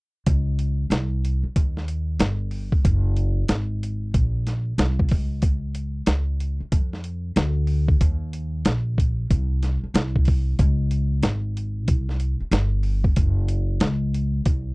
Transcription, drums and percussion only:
0.26 kick, closed hi-hat
0.59 closed hi-hat
0.91 snare, closed hi-hat
1.25 closed hi-hat
1.56 kick, closed hi-hat
1.77 snare
1.88 closed hi-hat
2.20 snare, closed hi-hat
2.51 open hi-hat
2.72 kick
2.85 kick, closed hi-hat
3.17 closed hi-hat
3.48 snare, closed hi-hat
3.83 closed hi-hat
4.14 kick, closed hi-hat
4.47 snare, closed hi-hat
4.78 snare, closed hi-hat
4.99 kick
5.09 kick, open hi-hat
5.42 kick, closed hi-hat
5.75 closed hi-hat
6.06 snare, closed hi-hat
6.40 closed hi-hat
6.72 kick, closed hi-hat
6.93 snare
7.04 closed hi-hat
7.36 snare, closed hi-hat
7.67 open hi-hat
7.88 kick
8.01 kick, closed hi-hat
8.33 closed hi-hat
8.65 snare, closed hi-hat
8.98 kick, closed hi-hat
9.31 kick, closed hi-hat
9.63 snare, closed hi-hat
9.95 snare, closed hi-hat
10.16 kick
10.25 kick, open hi-hat
10.59 kick, closed hi-hat
10.91 closed hi-hat
11.23 snare, closed hi-hat
11.57 closed hi-hat
11.88 kick, closed hi-hat
12.09 snare
12.20 closed hi-hat
12.52 snare, closed hi-hat
12.83 open hi-hat
13.04 kick
13.16 kick, closed hi-hat
13.48 closed hi-hat
13.80 snare, closed hi-hat
14.14 closed hi-hat
14.46 kick, closed hi-hat

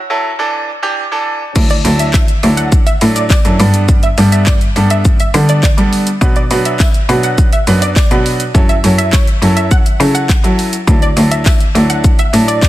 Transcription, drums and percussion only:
1.56 kick, crash, shaker
1.70 closed hi-hat, shaker
1.85 open hi-hat, shaker
1.99 closed hi-hat, shaker
2.14 kick, clap, tambourine, shaker
2.28 closed hi-hat, shaker
2.43 open hi-hat, shaker
2.57 closed hi-hat, shaker
2.72 kick, shaker
2.87 closed hi-hat, shaker
3.01 open hi-hat, shaker
3.16 closed hi-hat, shaker
3.30 kick, clap, tambourine, shaker
3.45 closed hi-hat, shaker
3.60 open hi-hat, shaker
3.74 closed hi-hat, shaker
3.88 kick, shaker
4.03 closed hi-hat, shaker
4.18 open hi-hat, shaker
4.32 closed hi-hat, shaker
4.46 kick, clap, tambourine, shaker
4.61 closed hi-hat, shaker
4.76 open hi-hat, shaker
4.90 closed hi-hat, shaker
5.05 kick, shaker
5.20 closed hi-hat, shaker
5.34 open hi-hat, shaker
5.49 closed hi-hat, shaker
5.63 kick, clap, tambourine, shaker
5.78 closed hi-hat, shaker
5.93 open hi-hat, shaker
6.07 closed hi-hat, shaker
6.22 kick, shaker
6.36 closed hi-hat, shaker
6.51 open hi-hat, shaker
6.65 closed hi-hat, shaker
6.80 kick, clap, tambourine, shaker
6.94 closed hi-hat, shaker
7.09 open hi-hat, shaker
7.23 closed hi-hat, shaker
7.38 kick, shaker
7.53 closed hi-hat, shaker
7.67 open hi-hat, shaker
7.82 closed hi-hat, shaker
7.96 kick, clap, tambourine, shaker
8.11 closed hi-hat, shaker
8.26 open hi-hat, shaker
8.40 closed hi-hat, shaker
8.55 kick, shaker
8.69 closed hi-hat, shaker
8.84 open hi-hat, shaker
8.99 closed hi-hat, shaker
9.13 kick, clap, tambourine, shaker
9.27 closed hi-hat, shaker
9.42 open hi-hat, shaker
9.57 closed hi-hat, shaker
9.71 kick, shaker
9.86 closed hi-hat, shaker
10.00 open hi-hat, shaker
10.15 closed hi-hat, shaker
10.29 kick, clap, tambourine, shaker
10.44 closed hi-hat, shaker
10.59 open hi-hat, shaker
10.73 closed hi-hat, shaker
10.88 kick, shaker
11.02 closed hi-hat, shaker
11.17 open hi-hat, shaker
11.32 closed hi-hat, shaker
11.46 kick, clap, tambourine, shaker
11.60 closed hi-hat, shaker
11.75 open hi-hat, shaker
11.90 closed hi-hat, shaker
12.04 kick, shaker
12.19 closed hi-hat, shaker
12.34 open hi-hat, shaker
12.48 closed hi-hat, shaker
12.62 kick, clap, tambourine, shaker

